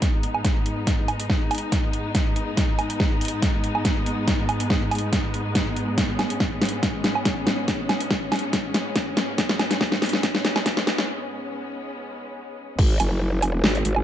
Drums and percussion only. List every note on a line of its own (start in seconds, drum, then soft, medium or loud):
0.02 kick medium
0.02 snare soft
0.02 closed hi-hat medium
0.23 closed hi-hat medium
0.35 low woodblock soft
0.45 kick loud
0.45 snare medium
0.45 closed hi-hat medium
0.66 closed hi-hat medium
0.87 kick medium
0.87 snare medium
0.87 closed hi-hat medium
1.08 closed hi-hat medium
1.08 low woodblock soft
1.20 closed hi-hat medium
1.30 kick loud
1.30 snare medium
1.51 closed hi-hat medium
1.51 open hi-hat medium
1.51 low woodblock medium
1.58 closed hi-hat medium
1.72 kick loud
1.72 snare medium
1.72 closed hi-hat medium
1.93 closed hi-hat medium
2.15 kick loud
2.15 snare medium
2.15 closed hi-hat medium
2.36 closed hi-hat medium
2.57 kick medium
2.57 snare medium
2.57 closed hi-hat medium
2.79 closed hi-hat medium
2.79 low woodblock medium
2.90 closed hi-hat medium
3.00 kick loud
3.00 snare medium
3.21 closed hi-hat medium
3.21 open hi-hat medium
3.28 closed hi-hat medium
3.42 kick loud
3.42 snare medium
3.42 closed hi-hat medium
3.64 closed hi-hat medium
3.75 low woodblock medium
3.85 kick loud
3.85 snare medium
3.85 closed hi-hat medium
4.06 closed hi-hat medium
4.28 kick medium
4.28 snare medium
4.28 closed hi-hat medium
4.49 closed hi-hat medium
4.49 low woodblock medium
4.60 closed hi-hat medium
4.70 kick loud
4.70 snare medium
4.91 closed hi-hat medium
4.91 open hi-hat medium
4.91 low woodblock medium
4.98 closed hi-hat medium
5.13 kick loud
5.13 snare medium
5.13 closed hi-hat medium
5.34 closed hi-hat medium
5.55 kick medium
5.55 snare medium
5.55 closed hi-hat medium
5.76 closed hi-hat soft
5.98 kick loud
5.98 snare medium
5.98 closed hi-hat medium
6.19 snare medium
6.19 closed hi-hat medium
6.19 low woodblock medium
6.30 closed hi-hat medium
6.40 kick loud
6.40 snare medium
6.62 snare medium
6.62 closed hi-hat medium
6.62 open hi-hat medium
6.69 closed hi-hat medium
6.83 kick loud
6.83 snare medium
6.83 closed hi-hat medium
7.04 snare medium
7.04 closed hi-hat soft
7.15 low woodblock medium
7.25 kick loud
7.25 snare medium
7.25 closed hi-hat medium
7.47 snare medium
7.47 closed hi-hat soft
7.68 kick medium
7.68 snare medium
7.68 closed hi-hat medium
7.89 snare medium
7.89 closed hi-hat medium
7.89 low woodblock medium
8.00 closed hi-hat medium
8.11 kick loud
8.11 snare medium
8.32 snare medium
8.32 closed hi-hat medium
8.32 open hi-hat medium
8.32 low woodblock medium
8.39 closed hi-hat medium
8.53 kick loud
8.53 snare medium
8.53 closed hi-hat medium
8.74 snare medium
8.74 closed hi-hat medium
8.96 kick loud
8.96 snare medium
8.96 closed hi-hat medium
9.17 snare medium
9.17 closed hi-hat medium
9.38 kick loud
9.38 snare medium
9.38 closed hi-hat medium
9.49 snare medium
9.59 snare medium
9.59 closed hi-hat medium
9.59 low woodblock medium
9.71 snare medium
9.71 closed hi-hat medium
9.81 kick loud
9.81 snare medium
9.92 snare medium
10.02 snare medium
10.02 closed hi-hat medium
10.02 open hi-hat loud
10.09 closed hi-hat medium
10.13 snare medium
10.23 kick loud
10.23 snare medium
10.23 closed hi-hat medium
10.35 snare medium
10.45 snare loud
10.45 closed hi-hat medium
10.56 snare medium
10.56 low woodblock medium
10.66 kick loud
10.66 snare loud
10.66 closed hi-hat medium
10.77 snare medium
10.87 snare loud
10.87 closed hi-hat medium
10.98 snare medium
12.79 kick loud
12.79 crash loud
13.00 closed hi-hat medium
13.00 low woodblock medium
13.42 closed hi-hat medium
13.42 low woodblock medium
13.64 snare loud
13.75 closed hi-hat soft
13.85 closed hi-hat medium
13.96 low woodblock medium